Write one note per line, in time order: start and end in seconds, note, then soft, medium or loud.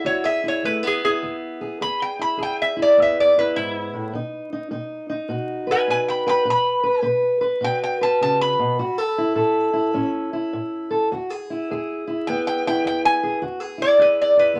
0.00 0.43 E4 medium
0.05 0.60 E2 medium
0.05 0.24 F#4 medium
0.05 0.25 C#5 medium
0.24 1.60 G#4 medium
0.24 0.44 E5 medium
0.44 1.02 E4 medium
0.48 0.65 C#5 medium
0.63 1.18 E2 medium
0.63 0.83 A3 medium
0.63 0.83 B4 loud
0.83 1.80 B3 medium
0.87 1.03 G#4 medium
1.04 1.79 E4 medium
1.04 1.35 G#4 loud
1.23 1.77 E2 medium
1.61 1.78 G#4 medium
1.81 2.35 E2 medium
1.81 2.37 G#4 medium
1.81 2.00 B5 loud
2.02 2.20 G5 medium
2.19 2.75 E4 medium
2.19 2.39 B5 medium
2.37 2.92 E2 medium
2.37 4.11 G#4 medium
2.43 2.59 G5 medium
2.62 2.79 E5 medium
2.76 3.35 E4 medium
2.82 2.99 D5 loud
2.97 3.51 E2 medium
2.97 4.14 B3 medium
3.02 3.18 E5 medium
3.20 3.37 D5 medium
3.37 4.12 E4 medium
3.37 3.56 B4 loud
3.56 3.93 G#2 medium
3.56 4.12 E4 loud
3.94 4.13 A2 medium
4.14 4.68 B2 medium
4.14 4.52 D#4 medium
4.53 4.71 D#4 medium
4.71 5.25 B2 medium
4.71 5.09 D#4 medium
5.09 6.43 D#4 medium
5.29 5.83 B2 medium
5.29 6.43 F#4 medium
5.67 6.25 B4 medium
5.71 5.89 B4 medium
5.71 5.89 G#5 loud
5.88 6.42 B2 medium
5.88 6.07 B4 medium
5.88 6.08 G#5 medium
6.08 6.26 G5 medium
6.08 6.27 B5 medium
6.26 6.43 B4 medium
6.26 6.45 G5 medium
6.26 6.47 B5 loud
6.45 6.99 B2 medium
6.45 6.82 B4 medium
6.50 7.04 B5 loud
6.83 7.01 B4 medium
7.02 7.57 B2 medium
7.02 7.40 B4 medium
7.41 7.99 B4 medium
7.61 8.15 B2 medium
7.61 8.75 F#4 medium
7.61 7.82 G5 loud
7.84 8.01 G5 medium
8.01 8.76 B4 medium
8.01 8.20 A5 loud
8.21 8.59 C#3 medium
8.21 8.40 A5 loud
8.41 10.10 B5 loud
8.59 8.78 B2 medium
8.79 9.33 A2 medium
8.79 8.98 F#4 medium
8.98 9.34 A4 medium
9.18 9.73 E4 medium
9.35 9.89 A2 medium
9.35 10.89 A4 medium
9.73 10.33 E4 medium
9.94 10.48 A2 medium
9.94 11.08 C#4 medium
10.33 11.15 E4 medium
10.53 11.06 A2 medium
10.90 11.08 A4 medium
11.12 11.65 E2 medium
11.12 11.30 F#4 medium
11.30 11.68 G#4 medium
11.50 12.06 E4 medium
11.70 12.23 E2 medium
11.70 13.22 G#4 medium
12.07 12.65 E4 medium
12.27 12.81 E2 medium
12.27 13.41 B3 medium
12.27 12.45 G5 loud
12.47 12.65 G5 medium
12.67 13.41 E4 medium
12.67 12.85 G5 loud
12.85 13.38 E2 medium
12.85 13.04 G5 loud
13.05 13.42 G#5 loud
13.23 13.40 G#4 medium
13.42 13.96 E2 medium
13.42 13.60 F#4 medium
13.60 13.98 G#4 medium
13.78 14.37 E4 medium
13.82 14.00 D5 loud
13.98 14.53 E2 medium
13.98 14.60 G#4 medium
13.98 14.20 B4 medium
14.22 14.39 D5 medium
14.37 14.60 E4 medium
14.37 14.58 B4 medium
14.54 14.60 E2 medium
14.54 14.60 B3 medium